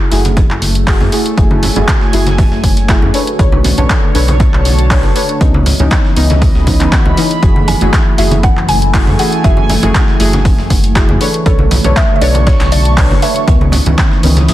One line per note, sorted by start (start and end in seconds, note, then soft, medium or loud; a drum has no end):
0.00 3.10 A3 medium
0.00 1.36 E4 medium
0.00 3.10 G#4 medium
0.00 5.37 C#5 medium
0.11 0.44 F#1 medium
0.11 0.84 A3 loud
0.11 4.05 A3 medium
0.11 0.84 E4 medium
0.11 0.84 F#4 medium
0.11 0.85 G#4 loud
0.11 snare medium
0.11 closed hi-hat medium
0.11 open hi-hat loud
0.25 closed hi-hat medium
0.25 closed hi-hat soft
0.25 high conga medium
0.37 kick loud
0.37 closed hi-hat soft
0.37 closed hi-hat medium
0.37 low conga medium
0.50 1.02 F#1 loud
0.50 clap soft
0.62 closed hi-hat medium
0.62 open hi-hat loud
0.62 high conga medium
0.75 closed hi-hat medium
0.87 1.09 A3 loud
0.87 1.09 E4 medium
0.87 1.10 F#4 medium
0.87 1.10 G#4 loud
0.87 kick loud
0.87 snare loud
0.87 clap loud
0.87 closed hi-hat medium
0.87 open hi-hat medium
1.01 1.09 F#2 medium
1.01 snare medium
1.01 high conga loud
1.06 3.14 G#5 medium
1.12 1.29 A3 medium
1.12 1.29 E4 medium
1.12 1.29 F#4 medium
1.12 1.29 G#4 medium
1.12 closed hi-hat medium
1.12 open hi-hat loud
1.26 closed hi-hat medium
1.37 1.70 F#1 loud
1.37 1.73 A3 medium
1.37 1.73 E4 medium
1.37 5.37 F#4 medium
1.37 1.73 F#4 medium
1.37 1.73 G#4 medium
1.37 kick loud
1.37 closed hi-hat medium
1.51 high conga loud
1.63 closed hi-hat medium
1.63 open hi-hat loud
1.63 low conga medium
1.76 1.85 F#1 medium
1.76 2.10 A3 medium
1.76 2.10 E4 medium
1.76 2.10 F#4 medium
1.76 2.11 G#4 loud
1.76 closed hi-hat medium
1.76 low conga medium
1.88 kick loud
1.88 snare loud
1.88 clap loud
1.88 closed hi-hat soft
1.88 closed hi-hat medium
1.88 high conga medium
2.01 snare soft
2.13 2.46 F#1 loud
2.13 2.86 A3 loud
2.13 2.86 E4 medium
2.13 2.86 F#4 medium
2.13 2.86 G#4 loud
2.13 closed hi-hat medium
2.13 open hi-hat loud
2.26 snare medium
2.26 closed hi-hat medium
2.26 high conga medium
2.38 kick loud
2.38 closed hi-hat medium
2.38 open hi-hat medium
2.38 low conga medium
2.52 3.04 F#1 loud
2.52 snare soft
2.64 kick medium
2.64 closed hi-hat medium
2.64 open hi-hat loud
2.64 high conga medium
2.77 closed hi-hat medium
2.77 closed hi-hat soft
2.89 3.11 A3 loud
2.89 3.11 E4 medium
2.89 3.11 F#4 medium
2.89 3.11 G#4 loud
2.89 kick loud
2.89 snare loud
2.89 clap loud
2.89 closed hi-hat medium
3.02 3.11 F#2 medium
3.02 high conga loud
3.14 5.41 D3 medium
3.14 5.39 A3 medium
3.14 3.30 D4 medium
3.14 5.39 D4 medium
3.14 3.30 A4 medium
3.14 3.31 B4 medium
3.14 3.31 C#5 medium
3.14 closed hi-hat medium
3.14 open hi-hat loud
3.26 6.22 C#5 medium
3.26 closed hi-hat medium
3.39 3.72 B1 loud
3.39 3.74 D4 medium
3.39 3.75 A4 medium
3.39 3.75 B4 medium
3.39 3.75 C#5 medium
3.39 kick loud
3.39 closed hi-hat soft
3.39 closed hi-hat medium
3.52 high conga loud
3.64 closed hi-hat medium
3.64 open hi-hat loud
3.64 low conga medium
3.77 3.86 B1 medium
3.77 4.12 D4 medium
3.77 4.12 A4 medium
3.77 4.12 B4 medium
3.77 4.12 C#5 loud
3.77 closed hi-hat medium
3.77 low conga medium
3.90 kick loud
3.90 snare loud
3.90 clap loud
3.90 closed hi-hat soft
3.90 closed hi-hat medium
3.90 high conga medium
4.10 4.87 D4 loud
4.10 5.41 A5 medium
4.15 4.48 B1 loud
4.15 4.88 A4 medium
4.15 4.88 B4 medium
4.15 4.88 C#5 loud
4.15 snare medium
4.15 closed hi-hat medium
4.15 open hi-hat loud
4.28 closed hi-hat medium
4.28 closed hi-hat soft
4.28 high conga medium
4.40 kick loud
4.40 closed hi-hat soft
4.40 closed hi-hat medium
4.40 low conga medium
4.53 5.05 B1 loud
4.53 clap soft
4.65 closed hi-hat medium
4.65 open hi-hat loud
4.65 high conga medium
4.79 closed hi-hat medium
4.90 5.13 D4 loud
4.90 5.13 A4 medium
4.90 5.13 B4 medium
4.90 5.13 C#5 loud
4.90 kick loud
4.90 snare loud
4.90 clap loud
4.90 closed hi-hat medium
4.90 open hi-hat medium
5.03 5.12 F#1 medium
5.03 snare medium
5.03 high conga medium
5.15 5.32 D4 medium
5.15 5.32 A4 medium
5.15 5.32 B4 medium
5.15 5.32 C#5 medium
5.15 closed hi-hat medium
5.15 open hi-hat loud
5.29 closed hi-hat medium
5.41 5.74 C#2 loud
5.41 5.76 E3 medium
5.41 12.11 E3 medium
5.41 11.17 E3 medium
5.41 5.76 B3 medium
5.41 7.41 B3 medium
5.41 5.76 C#4 medium
5.41 7.41 D#4 medium
5.41 5.76 D#4 medium
5.41 7.41 G#4 medium
5.41 kick loud
5.41 closed hi-hat soft
5.41 closed hi-hat medium
5.54 high conga loud
5.66 closed hi-hat medium
5.66 open hi-hat loud
5.66 low conga medium
5.79 5.88 C#2 medium
5.79 6.14 E3 medium
5.79 6.14 B3 medium
5.79 6.14 C#4 medium
5.79 6.14 D#4 loud
5.79 closed hi-hat medium
5.79 low conga medium
5.91 kick loud
5.91 snare loud
5.91 clap loud
5.91 closed hi-hat soft
5.91 closed hi-hat medium
5.91 high conga medium
5.96 7.43 D#5 medium
6.05 snare soft
6.14 6.49 C#2 loud
6.14 6.64 E3 loud
6.14 6.65 B3 medium
6.14 6.65 C#4 medium
6.14 6.65 D#4 loud
6.14 8.94 B5 medium
6.14 closed hi-hat medium
6.14 open hi-hat loud
6.30 snare soft
6.30 closed hi-hat medium
6.30 high conga loud
6.42 kick loud
6.42 closed hi-hat medium
6.42 open hi-hat medium
6.42 low conga medium
6.55 6.87 C#2 loud
6.55 snare soft
6.67 6.77 E3 medium
6.67 6.77 B3 medium
6.67 6.77 C#4 medium
6.67 6.77 D#4 medium
6.67 kick medium
6.67 closed hi-hat medium
6.67 open hi-hat loud
6.67 high conga medium
6.80 6.89 E3 medium
6.80 6.89 B3 medium
6.80 6.89 C#4 medium
6.80 6.89 D#4 loud
6.80 clap soft
6.80 closed hi-hat soft
6.80 closed hi-hat medium
6.92 7.14 E3 medium
6.92 7.14 B3 medium
6.92 7.15 C#4 medium
6.92 7.15 F#4 medium
6.92 kick loud
6.92 snare loud
6.92 clap loud
6.92 closed hi-hat medium
6.92 closed hi-hat soft
7.06 7.14 C#2 medium
7.06 high conga loud
7.17 7.28 E3 loud
7.17 7.28 B3 medium
7.17 7.28 C#4 medium
7.17 7.28 D#4 loud
7.17 closed hi-hat medium
7.17 open hi-hat loud
7.31 closed hi-hat medium
7.42 7.75 F#1 loud
7.42 7.78 A3 medium
7.42 13.44 A3 medium
7.42 11.17 C#4 medium
7.42 7.78 E4 medium
7.42 7.78 F#4 medium
7.42 9.42 G#4 medium
7.42 7.78 G#4 medium
7.42 kick loud
7.42 closed hi-hat medium
7.42 closed hi-hat soft
7.56 high conga medium
7.68 8.15 G#5 loud
7.68 closed hi-hat medium
7.68 open hi-hat loud
7.68 low conga medium
7.81 7.90 F#1 medium
7.81 8.15 A3 medium
7.81 8.15 E4 medium
7.81 8.15 F#4 medium
7.81 8.16 G#4 loud
7.81 closed hi-hat medium
7.81 low conga medium
7.93 kick loud
7.93 snare loud
7.93 clap loud
7.93 closed hi-hat medium
7.93 closed hi-hat soft
7.93 high conga medium
8.18 8.51 F#1 loud
8.18 8.91 A3 loud
8.18 8.91 E4 medium
8.18 8.91 F#4 medium
8.18 8.91 G#4 loud
8.18 8.42 E5 medium
8.18 snare medium
8.18 closed hi-hat medium
8.18 open hi-hat loud
8.31 12.02 A3 medium
8.31 closed hi-hat soft
8.31 closed hi-hat medium
8.31 high conga medium
8.43 8.69 F#5 loud
8.43 kick loud
8.43 closed hi-hat medium
8.43 closed hi-hat soft
8.43 low conga medium
8.57 9.09 F#1 loud
8.57 11.21 G#5 medium
8.57 clap soft
8.68 9.21 G#5 loud
8.68 closed hi-hat medium
8.68 open hi-hat loud
8.68 high conga medium
8.82 closed hi-hat medium
8.94 9.16 A3 loud
8.94 9.16 E4 medium
8.94 9.16 F#4 medium
8.94 9.16 G#4 loud
8.94 kick loud
8.94 snare loud
8.94 clap loud
8.94 closed hi-hat medium
8.94 open hi-hat medium
9.07 9.16 F#2 medium
9.07 snare medium
9.07 high conga loud
9.19 9.35 A3 medium
9.19 9.35 E4 medium
9.19 9.36 F#4 medium
9.19 9.36 G#4 medium
9.19 9.45 F#5 loud
9.19 closed hi-hat medium
9.19 open hi-hat loud
9.32 closed hi-hat medium
9.44 9.77 F#1 loud
9.44 9.79 A3 medium
9.44 9.80 E4 medium
9.44 9.80 F#4 medium
9.44 9.80 G#4 medium
9.44 10.92 E5 medium
9.44 kick loud
9.44 closed hi-hat medium
9.57 high conga medium
9.69 closed hi-hat medium
9.69 open hi-hat loud
9.69 low conga medium
9.83 9.91 F#1 medium
9.83 10.17 A3 loud
9.83 10.17 E4 medium
9.83 10.17 F#4 medium
9.83 10.17 G#4 loud
9.83 closed hi-hat medium
9.83 low conga medium
9.94 kick loud
9.94 snare loud
9.94 clap loud
9.94 closed hi-hat medium
9.94 high conga medium
10.08 snare soft
10.19 10.53 F#1 medium
10.19 10.92 A3 loud
10.19 10.93 E4 medium
10.19 10.93 F#4 medium
10.19 10.93 G#4 loud
10.19 closed hi-hat medium
10.19 open hi-hat loud
10.33 snare medium
10.33 closed hi-hat medium
10.33 high conga medium
10.45 kick loud
10.45 closed hi-hat medium
10.45 open hi-hat medium
10.45 low conga medium
10.59 11.10 F#1 loud
10.59 snare soft
10.70 kick medium
10.70 closed hi-hat medium
10.70 open hi-hat loud
10.70 high conga medium
10.84 closed hi-hat soft
10.84 closed hi-hat medium
10.95 11.18 A3 loud
10.95 11.18 E4 medium
10.95 11.18 F#4 medium
10.95 11.18 G#4 loud
10.95 kick loud
10.95 snare loud
10.95 clap loud
10.95 closed hi-hat medium
11.09 11.17 F#2 medium
11.09 high conga loud
11.20 13.48 D3 medium
11.20 11.37 D4 medium
11.20 13.45 D4 medium
11.20 13.45 F#4 medium
11.20 11.37 A4 medium
11.20 11.37 B4 medium
11.20 11.37 C#5 medium
11.20 13.45 C#6 medium
11.20 closed hi-hat medium
11.20 open hi-hat loud
11.34 closed hi-hat medium
11.46 11.79 B1 loud
11.46 11.81 D4 medium
11.46 11.81 A4 medium
11.46 11.98 A4 loud
11.46 11.81 B4 medium
11.46 11.82 C#5 medium
11.46 kick loud
11.46 closed hi-hat medium
11.59 high conga medium
11.71 closed hi-hat medium
11.71 open hi-hat loud
11.71 low conga medium
11.84 11.93 B1 medium
11.84 12.19 D4 medium
11.84 12.19 A4 medium
11.84 12.19 B4 medium
11.84 12.19 C#5 loud
11.84 14.29 C#6 medium
11.84 closed hi-hat medium
11.84 low conga medium
11.96 12.15 E5 loud
11.96 kick loud
11.96 snare loud
11.96 clap loud
11.96 closed hi-hat medium
11.96 high conga medium
12.16 12.22 E5 medium
12.21 12.54 B1 loud
12.21 12.94 D4 loud
12.21 12.94 A4 medium
12.21 12.95 B4 medium
12.21 12.95 C#5 loud
12.21 12.45 D5 loud
12.21 13.48 A5 medium
12.21 closed hi-hat medium
12.21 open hi-hat loud
12.34 closed hi-hat medium
12.34 high conga medium
12.47 12.70 C#5 loud
12.47 kick loud
12.47 snare loud
12.47 closed hi-hat medium
12.47 low conga medium
12.60 13.12 B1 loud
12.60 snare loud
12.60 clap soft
12.60 closed hi-hat medium
12.72 13.19 D5 loud
12.72 closed hi-hat medium
12.72 open hi-hat loud
12.72 high conga medium
12.85 closed hi-hat medium
12.97 13.19 D4 loud
12.97 13.20 A4 medium
12.97 13.20 B4 medium
12.97 13.20 C#5 loud
12.97 kick loud
12.97 snare loud
12.97 clap loud
12.97 closed hi-hat medium
12.97 open hi-hat medium
13.11 13.19 F#1 medium
13.11 snare medium
13.11 high conga loud
13.22 13.39 D4 medium
13.22 13.39 A4 medium
13.22 13.39 B4 medium
13.22 13.39 C#5 medium
13.22 14.54 E5 loud
13.22 closed hi-hat medium
13.22 open hi-hat loud
13.36 closed hi-hat medium
13.47 13.80 C#2 loud
13.47 13.83 D#3 medium
13.47 13.83 E3 medium
13.47 14.54 E3 medium
13.47 14.54 G#3 medium
13.47 13.83 B3 medium
13.47 14.54 B3 medium
13.47 14.54 C#4 medium
13.47 13.83 C#4 medium
13.47 14.54 G#4 medium
13.47 kick loud
13.47 closed hi-hat medium
13.61 high bongo soft
13.61 high conga medium
13.72 closed hi-hat medium
13.72 open hi-hat loud
13.72 low conga loud
13.86 13.95 C#2 medium
13.86 14.21 D#3 loud
13.86 14.20 E3 medium
13.86 14.20 B3 medium
13.86 14.20 C#4 medium
13.86 closed hi-hat medium
13.86 low conga loud
13.98 kick loud
13.98 snare loud
13.98 clap loud
13.98 closed hi-hat medium
13.98 high conga medium
14.03 14.54 D#6 medium
14.11 snare soft
14.20 14.48 C#2 loud
14.20 14.54 D#3 loud
14.20 14.54 E3 loud
14.20 14.54 B3 medium
14.20 14.54 C#4 medium
14.20 14.54 B5 medium
14.20 closed hi-hat medium
14.20 open hi-hat loud
14.37 snare medium
14.37 closed hi-hat medium
14.37 high conga medium
14.48 closed hi-hat medium
14.48 open hi-hat medium
14.48 low conga medium